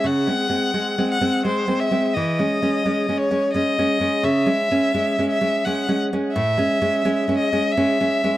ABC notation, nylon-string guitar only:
X:1
M:3/4
L:1/8
Q:1/4=86
K:C#m
V:1 name="Nylon-string guitar" clef=bass
(3C, [G,^B,] [G,B,] (3[G,B,] [G,B,] [G,B,] (3[G,B,] [G,B,] [G,B,] | (3E, [G,C] [G,C] (3[G,C] [G,C] [G,C] (3[G,C] [G,C] [G,C] | (3C, [G,C] [G,C] (3[G,C] [G,C] [G,C] (3[G,C] [G,C] [G,C] | [K:Alyd] (3A,, [G,C] [G,C] (3[G,C] [G,C] [G,C] (3[G,C] [G,C] [G,C] |]